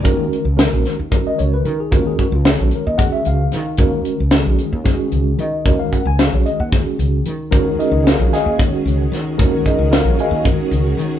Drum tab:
HH |xxxxxxx|xxxxxxx|xxxxxxx|xxxxxxx|
SD |--oo---|--o---o|--o-o--|--o-o--|
BD |o---o--|oo--o--|o---o--|oo--o--|

HH |xxxxxxx|xxxxxxx|
SD |--oo--o|--o----|
BD |o---o--|oo--o--|